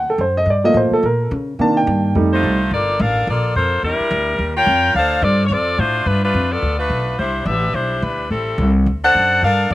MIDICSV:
0, 0, Header, 1, 5, 480
1, 0, Start_track
1, 0, Key_signature, -2, "minor"
1, 0, Tempo, 279720
1, 815, Time_signature, 4, 2, 24, 8
1, 16714, End_track
2, 0, Start_track
2, 0, Title_t, "Grand piano"
2, 0, Program_c, 0, 0
2, 170, Note_on_c, 0, 69, 70
2, 345, Note_off_c, 0, 69, 0
2, 359, Note_on_c, 0, 72, 73
2, 622, Note_off_c, 0, 72, 0
2, 641, Note_on_c, 0, 75, 87
2, 820, Note_off_c, 0, 75, 0
2, 863, Note_on_c, 0, 74, 74
2, 1104, Note_on_c, 0, 53, 53
2, 1106, Note_on_c, 0, 57, 52
2, 1115, Note_off_c, 0, 74, 0
2, 1118, Note_on_c, 0, 75, 96
2, 1121, Note_on_c, 0, 58, 62
2, 1299, Note_off_c, 0, 75, 0
2, 1323, Note_on_c, 0, 72, 66
2, 1584, Note_off_c, 0, 72, 0
2, 1604, Note_on_c, 0, 69, 79
2, 1743, Note_off_c, 0, 53, 0
2, 1745, Note_off_c, 0, 57, 0
2, 1753, Note_off_c, 0, 58, 0
2, 1782, Note_off_c, 0, 69, 0
2, 1810, Note_on_c, 0, 70, 73
2, 2240, Note_off_c, 0, 70, 0
2, 2731, Note_on_c, 0, 51, 58
2, 2740, Note_on_c, 0, 58, 57
2, 2758, Note_on_c, 0, 62, 57
2, 2768, Note_on_c, 0, 81, 88
2, 3027, Note_off_c, 0, 81, 0
2, 3038, Note_on_c, 0, 79, 84
2, 3644, Note_off_c, 0, 51, 0
2, 3649, Note_off_c, 0, 58, 0
2, 3657, Note_off_c, 0, 79, 0
2, 3658, Note_off_c, 0, 62, 0
2, 3699, Note_on_c, 0, 55, 58
2, 3712, Note_on_c, 0, 57, 53
2, 3715, Note_on_c, 0, 63, 59
2, 4422, Note_off_c, 0, 55, 0
2, 4428, Note_off_c, 0, 57, 0
2, 4430, Note_off_c, 0, 63, 0
2, 16714, End_track
3, 0, Start_track
3, 0, Title_t, "Saxophone section"
3, 0, Program_c, 1, 65
3, 4001, Note_on_c, 1, 57, 84
3, 4002, Note_on_c, 1, 72, 95
3, 4004, Note_on_c, 1, 65, 89
3, 4006, Note_on_c, 1, 63, 84
3, 4619, Note_off_c, 1, 57, 0
3, 4619, Note_off_c, 1, 72, 0
3, 4620, Note_off_c, 1, 65, 0
3, 4621, Note_off_c, 1, 63, 0
3, 4689, Note_on_c, 1, 58, 91
3, 4693, Note_on_c, 1, 65, 78
3, 4694, Note_on_c, 1, 74, 104
3, 4695, Note_on_c, 1, 69, 83
3, 5145, Note_off_c, 1, 69, 0
3, 5151, Note_off_c, 1, 58, 0
3, 5153, Note_off_c, 1, 65, 0
3, 5153, Note_off_c, 1, 74, 0
3, 5161, Note_on_c, 1, 77, 93
3, 5162, Note_on_c, 1, 62, 81
3, 5163, Note_on_c, 1, 70, 93
3, 5166, Note_on_c, 1, 69, 92
3, 5627, Note_off_c, 1, 62, 0
3, 5627, Note_off_c, 1, 77, 0
3, 5628, Note_off_c, 1, 70, 0
3, 5629, Note_off_c, 1, 69, 0
3, 5659, Note_on_c, 1, 58, 87
3, 5664, Note_on_c, 1, 69, 78
3, 5664, Note_on_c, 1, 74, 96
3, 5666, Note_on_c, 1, 65, 85
3, 6084, Note_off_c, 1, 58, 0
3, 6087, Note_off_c, 1, 69, 0
3, 6087, Note_off_c, 1, 74, 0
3, 6088, Note_off_c, 1, 65, 0
3, 6109, Note_on_c, 1, 72, 108
3, 6113, Note_on_c, 1, 58, 89
3, 6117, Note_on_c, 1, 69, 86
3, 6118, Note_on_c, 1, 65, 89
3, 6548, Note_off_c, 1, 72, 0
3, 6550, Note_off_c, 1, 58, 0
3, 6552, Note_off_c, 1, 65, 0
3, 6552, Note_off_c, 1, 69, 0
3, 6593, Note_on_c, 1, 70, 101
3, 6598, Note_on_c, 1, 62, 82
3, 6599, Note_on_c, 1, 64, 90
3, 6603, Note_on_c, 1, 55, 96
3, 7479, Note_off_c, 1, 62, 0
3, 7479, Note_off_c, 1, 64, 0
3, 7758, Note_off_c, 1, 70, 0
3, 7763, Note_off_c, 1, 55, 0
3, 7837, Note_on_c, 1, 65, 98
3, 7844, Note_on_c, 1, 70, 97
3, 7848, Note_on_c, 1, 73, 102
3, 7850, Note_on_c, 1, 79, 116
3, 8456, Note_off_c, 1, 65, 0
3, 8460, Note_off_c, 1, 70, 0
3, 8462, Note_off_c, 1, 73, 0
3, 8463, Note_off_c, 1, 79, 0
3, 8509, Note_on_c, 1, 62, 102
3, 8511, Note_on_c, 1, 69, 99
3, 8511, Note_on_c, 1, 77, 112
3, 8517, Note_on_c, 1, 72, 97
3, 8948, Note_off_c, 1, 62, 0
3, 8948, Note_off_c, 1, 77, 0
3, 8949, Note_off_c, 1, 69, 0
3, 8952, Note_off_c, 1, 72, 0
3, 8969, Note_on_c, 1, 74, 105
3, 8973, Note_on_c, 1, 65, 88
3, 8975, Note_on_c, 1, 60, 87
3, 8975, Note_on_c, 1, 69, 84
3, 9352, Note_off_c, 1, 74, 0
3, 9355, Note_off_c, 1, 65, 0
3, 9356, Note_off_c, 1, 60, 0
3, 9356, Note_off_c, 1, 69, 0
3, 9371, Note_on_c, 1, 73, 83
3, 9460, Note_off_c, 1, 73, 0
3, 9480, Note_on_c, 1, 65, 86
3, 9483, Note_on_c, 1, 60, 89
3, 9486, Note_on_c, 1, 74, 103
3, 9493, Note_on_c, 1, 69, 96
3, 9926, Note_off_c, 1, 65, 0
3, 9942, Note_on_c, 1, 57, 89
3, 9947, Note_off_c, 1, 60, 0
3, 9947, Note_on_c, 1, 65, 82
3, 9949, Note_off_c, 1, 74, 0
3, 9949, Note_on_c, 1, 72, 110
3, 9951, Note_on_c, 1, 62, 80
3, 9953, Note_off_c, 1, 69, 0
3, 10396, Note_off_c, 1, 65, 0
3, 10403, Note_off_c, 1, 57, 0
3, 10404, Note_off_c, 1, 62, 0
3, 10413, Note_on_c, 1, 71, 96
3, 10417, Note_on_c, 1, 65, 82
3, 10420, Note_off_c, 1, 72, 0
3, 10424, Note_on_c, 1, 57, 87
3, 10425, Note_on_c, 1, 62, 87
3, 10682, Note_off_c, 1, 62, 0
3, 10684, Note_off_c, 1, 71, 0
3, 10687, Note_off_c, 1, 57, 0
3, 10689, Note_off_c, 1, 65, 0
3, 10702, Note_on_c, 1, 62, 93
3, 10705, Note_on_c, 1, 71, 96
3, 10708, Note_on_c, 1, 57, 90
3, 10710, Note_on_c, 1, 65, 94
3, 11146, Note_off_c, 1, 62, 0
3, 11147, Note_off_c, 1, 71, 0
3, 11149, Note_off_c, 1, 57, 0
3, 11150, Note_off_c, 1, 65, 0
3, 11182, Note_on_c, 1, 74, 108
3, 11184, Note_on_c, 1, 65, 96
3, 11186, Note_on_c, 1, 59, 90
3, 11192, Note_on_c, 1, 69, 92
3, 11631, Note_off_c, 1, 65, 0
3, 11652, Note_on_c, 1, 65, 74
3, 11655, Note_on_c, 1, 57, 78
3, 11658, Note_on_c, 1, 62, 87
3, 11659, Note_off_c, 1, 74, 0
3, 11661, Note_off_c, 1, 59, 0
3, 11664, Note_off_c, 1, 69, 0
3, 11665, Note_on_c, 1, 71, 95
3, 12283, Note_off_c, 1, 65, 0
3, 12284, Note_off_c, 1, 57, 0
3, 12286, Note_off_c, 1, 62, 0
3, 12289, Note_off_c, 1, 71, 0
3, 12331, Note_on_c, 1, 55, 87
3, 12334, Note_on_c, 1, 72, 94
3, 12336, Note_on_c, 1, 64, 90
3, 12341, Note_on_c, 1, 62, 78
3, 12778, Note_off_c, 1, 55, 0
3, 12779, Note_off_c, 1, 72, 0
3, 12780, Note_off_c, 1, 64, 0
3, 12783, Note_off_c, 1, 62, 0
3, 12804, Note_on_c, 1, 67, 84
3, 12804, Note_on_c, 1, 76, 99
3, 12812, Note_on_c, 1, 62, 76
3, 12815, Note_on_c, 1, 71, 82
3, 13271, Note_off_c, 1, 62, 0
3, 13282, Note_on_c, 1, 64, 85
3, 13288, Note_off_c, 1, 67, 0
3, 13288, Note_off_c, 1, 76, 0
3, 13288, Note_on_c, 1, 55, 75
3, 13290, Note_on_c, 1, 72, 87
3, 13291, Note_on_c, 1, 62, 80
3, 13293, Note_off_c, 1, 71, 0
3, 13766, Note_off_c, 1, 55, 0
3, 13767, Note_off_c, 1, 64, 0
3, 13771, Note_off_c, 1, 72, 0
3, 13772, Note_off_c, 1, 62, 0
3, 13785, Note_on_c, 1, 64, 83
3, 13785, Note_on_c, 1, 71, 89
3, 13787, Note_on_c, 1, 55, 79
3, 13789, Note_on_c, 1, 62, 79
3, 14237, Note_off_c, 1, 64, 0
3, 14240, Note_off_c, 1, 55, 0
3, 14257, Note_on_c, 1, 64, 67
3, 14258, Note_off_c, 1, 71, 0
3, 14258, Note_on_c, 1, 60, 74
3, 14260, Note_off_c, 1, 62, 0
3, 14260, Note_on_c, 1, 55, 69
3, 14262, Note_on_c, 1, 69, 82
3, 14979, Note_off_c, 1, 60, 0
3, 14979, Note_off_c, 1, 64, 0
3, 14980, Note_off_c, 1, 55, 0
3, 14981, Note_off_c, 1, 69, 0
3, 15511, Note_on_c, 1, 72, 97
3, 15515, Note_on_c, 1, 69, 94
3, 15517, Note_on_c, 1, 62, 84
3, 15519, Note_on_c, 1, 78, 114
3, 16133, Note_off_c, 1, 72, 0
3, 16135, Note_off_c, 1, 69, 0
3, 16136, Note_off_c, 1, 62, 0
3, 16137, Note_off_c, 1, 78, 0
3, 16196, Note_on_c, 1, 70, 89
3, 16198, Note_on_c, 1, 62, 92
3, 16198, Note_on_c, 1, 77, 112
3, 16201, Note_on_c, 1, 69, 100
3, 16631, Note_off_c, 1, 70, 0
3, 16632, Note_off_c, 1, 62, 0
3, 16632, Note_off_c, 1, 77, 0
3, 16634, Note_off_c, 1, 69, 0
3, 16714, End_track
4, 0, Start_track
4, 0, Title_t, "Upright bass"
4, 0, Program_c, 2, 32
4, 0, Note_on_c, 2, 38, 91
4, 302, Note_off_c, 2, 38, 0
4, 312, Note_on_c, 2, 42, 97
4, 774, Note_off_c, 2, 42, 0
4, 784, Note_on_c, 2, 43, 89
4, 1259, Note_off_c, 2, 43, 0
4, 1269, Note_on_c, 2, 45, 103
4, 1545, Note_off_c, 2, 45, 0
4, 1763, Note_on_c, 2, 46, 93
4, 2234, Note_off_c, 2, 46, 0
4, 2249, Note_on_c, 2, 49, 98
4, 2717, Note_off_c, 2, 49, 0
4, 2727, Note_on_c, 2, 48, 84
4, 3196, Note_off_c, 2, 48, 0
4, 3209, Note_on_c, 2, 43, 108
4, 3677, Note_off_c, 2, 43, 0
4, 3691, Note_on_c, 2, 41, 90
4, 4158, Note_off_c, 2, 41, 0
4, 4171, Note_on_c, 2, 36, 94
4, 4637, Note_off_c, 2, 36, 0
4, 4647, Note_on_c, 2, 31, 88
4, 5115, Note_off_c, 2, 31, 0
4, 5139, Note_on_c, 2, 33, 107
4, 5602, Note_off_c, 2, 33, 0
4, 5616, Note_on_c, 2, 34, 98
4, 6080, Note_off_c, 2, 34, 0
4, 6098, Note_on_c, 2, 41, 83
4, 6561, Note_off_c, 2, 41, 0
4, 6569, Note_on_c, 2, 40, 89
4, 6834, Note_off_c, 2, 40, 0
4, 7046, Note_on_c, 2, 38, 109
4, 7515, Note_off_c, 2, 38, 0
4, 7524, Note_on_c, 2, 39, 90
4, 7994, Note_off_c, 2, 39, 0
4, 8001, Note_on_c, 2, 41, 98
4, 8472, Note_off_c, 2, 41, 0
4, 8484, Note_on_c, 2, 38, 94
4, 8944, Note_off_c, 2, 38, 0
4, 8954, Note_on_c, 2, 43, 108
4, 9422, Note_off_c, 2, 43, 0
4, 9433, Note_on_c, 2, 41, 90
4, 9908, Note_off_c, 2, 41, 0
4, 9922, Note_on_c, 2, 45, 94
4, 10384, Note_off_c, 2, 45, 0
4, 10394, Note_on_c, 2, 43, 91
4, 10862, Note_off_c, 2, 43, 0
4, 10872, Note_on_c, 2, 41, 94
4, 11348, Note_off_c, 2, 41, 0
4, 11361, Note_on_c, 2, 38, 90
4, 11824, Note_off_c, 2, 38, 0
4, 11834, Note_on_c, 2, 35, 88
4, 12308, Note_off_c, 2, 35, 0
4, 12333, Note_on_c, 2, 36, 84
4, 12784, Note_off_c, 2, 36, 0
4, 12794, Note_on_c, 2, 33, 104
4, 13268, Note_off_c, 2, 33, 0
4, 13276, Note_on_c, 2, 35, 84
4, 13749, Note_off_c, 2, 35, 0
4, 13768, Note_on_c, 2, 38, 93
4, 14235, Note_off_c, 2, 38, 0
4, 14249, Note_on_c, 2, 33, 79
4, 14712, Note_off_c, 2, 33, 0
4, 14722, Note_on_c, 2, 36, 109
4, 15193, Note_off_c, 2, 36, 0
4, 15206, Note_on_c, 2, 38, 97
4, 15675, Note_off_c, 2, 38, 0
4, 15692, Note_on_c, 2, 42, 97
4, 16157, Note_off_c, 2, 42, 0
4, 16169, Note_on_c, 2, 43, 90
4, 16636, Note_off_c, 2, 43, 0
4, 16650, Note_on_c, 2, 45, 107
4, 16714, Note_off_c, 2, 45, 0
4, 16714, End_track
5, 0, Start_track
5, 0, Title_t, "Muted upright bass strokes"
5, 1563, Note_on_c, 9, 29, 45
5, 1734, Note_off_c, 9, 29, 0
5, 6863, Note_on_c, 9, 29, 43
5, 7035, Note_off_c, 9, 29, 0
5, 16714, End_track
0, 0, End_of_file